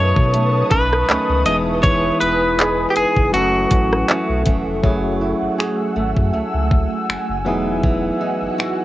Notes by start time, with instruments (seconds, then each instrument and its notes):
Already playing: sub bass F#2, nylon-string guitar B2 D#3 A3 C#4, tine electric piano F#3 B3 C#4 D#4 A4, ambient pad B4 A5 C#6 D#6, clean electric guitar C#5
0.16 sub bass B2, kick
0.34 nylon-string guitar A3, closed hi-hat
0.71 sub bass B1, nylon-string guitar C#4, clean electric guitar B4, kick, closed hi-hat
0.93 cross-stick
1.09 sub bass C#2, nylon-string guitar D#3 A3 C#4, clap, closed hi-hat
1.29 sub bass C#2
1.45 sub bass E1, tine electric piano E3 G#3 B3 D#4 G#4, nylon-string guitar E3, clean electric guitar D#5, ambient pad G#5, closed hi-hat
1.83 nylon-string guitar E3, clean electric guitar C#5, kick, closed hi-hat
2.20 sub bass E1, nylon-string guitar B3, clean electric guitar B4, closed hi-hat
2.59 nylon-string guitar B3 D#4 G#4, clap, closed hi-hat
2.90 clean electric guitar G4
2.96 sub bass F#1, clean electric guitar G#4, closed hi-hat
3.16 sub bass F#1, kick
3.32 sub bass F#1, nylon-string guitar F#2, tine electric piano F#3 A3 C#4 E4 A4, clean electric guitar F#4, ambient pad A4 F#5 C#6, closed hi-hat
3.71 sub bass A1, nylon-string guitar C#4, kick, closed hi-hat
3.93 cross-stick
4.09 nylon-string guitar E3 A3 C#4, clap, closed hi-hat
4.29 sub bass B1
4.46 sub bass E1, nylon-string guitar E3, kick, closed hi-hat
4.67 sub bass F1
4.82 sub bass F#1, tine electric piano F#3 A3 C#4 E4 G#4, nylon-string guitar F#3, ambient pad A3 F#5 G#5 E6, kick
5.21 nylon-string guitar E4
5.42 sub bass G#1
5.58 nylon-string guitar G#4, finger snap
5.96 sub bass G#1, nylon-string guitar A3
6.17 sub bass F#2, kick
6.33 sub bass C#2, nylon-string guitar A3
6.54 sub bass C#2
6.71 kick
7.09 sub bass F#1, finger snap
7.29 sub bass F#1
7.45 sub bass E1, nylon-string guitar E3, tine electric piano F#3 B3 D#4 E4 G#4, ambient pad F#4 F#5 E6
7.83 nylon-string guitar E3, kick
8.21 nylon-string guitar D#4
8.42 sub bass F#1
8.58 nylon-string guitar F#4, finger snap